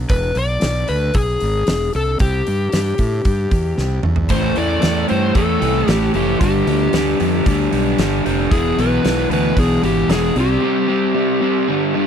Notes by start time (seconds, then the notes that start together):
0.09 E1 B4, kick, open hi-hat
0.35 B1 D5, open hi-hat
0.61 B1, snare, open hi-hat
0.88 D2 B4, open hi-hat
1.14 B1 G#4, kick, open hi-hat
1.40 G#1, open hi-hat
1.67 E1, snare, open hi-hat
1.93 C2 A4, open hi-hat
2.19 C2 G4, kick, open hi-hat
2.47 G2, open hi-hat
2.72 G2, snare, open hi-hat
2.98 A2, kick, open hi-hat
3.25 G2, kick, open hi-hat
3.51 E2, kick, open hi-hat
3.78 C2, snare
4.03 E2, mid tom
4.16 floor tom
4.29 A1 A2 E3 A3 C5, kick, open hi-hat
4.56 E2 A2 E3 A3 D5, open hi-hat
4.82 E2 A2 E3 A3, snare, open hi-hat
5.08 G2 A2 E3 A3 C5, open hi-hat
5.35 E2 A2 E3 A3 A4, kick, open hi-hat
5.61 C2 A2 E3 A3, open hi-hat
5.87 A1 A2 E3 A3 G4, snare, open hi-hat
6.14 F1 A2 E3 A3 G4, open hi-hat
6.41 G1 G2 D3 G3 G4, kick, open hi-hat
6.67 D2 G2 D3 G3, open hi-hat
6.93 D2 G2 D3 G3, snare, open hi-hat
7.20 F2 G2 D3 G3, open hi-hat
7.46 D2 G2 D3 G3, kick, open hi-hat
7.72 B1 G2 D3 G3, open hi-hat
7.98 G1 G2 D3 G3, snare, open hi-hat
8.25 F1 G2 D3 G3, open hi-hat
8.51 E1 E2 B2 E3 G#4, kick, open hi-hat
8.78 B1 E2 B2 E3 B4, open hi-hat
9.05 B1 E2 B2 E3, snare, open hi-hat
9.30 D2 E2 B2 E3 B4, open hi-hat
9.57 B1 E2 B2 E3 G#4, kick, open hi-hat
9.82 G#1 E2 B2 E3 G4, open hi-hat
10.08 E1 E2 B2 E3 G#4, snare, open hi-hat
10.36 C2 C3 G3 C4, open hi-hat
10.40 G4
10.62 C3 G3 C4
10.88 C3 G3 C4
11.15 C3 G3 C4
11.41 C3 G3 C4
11.68 G2 D3 G3
11.94 G2 D3 G3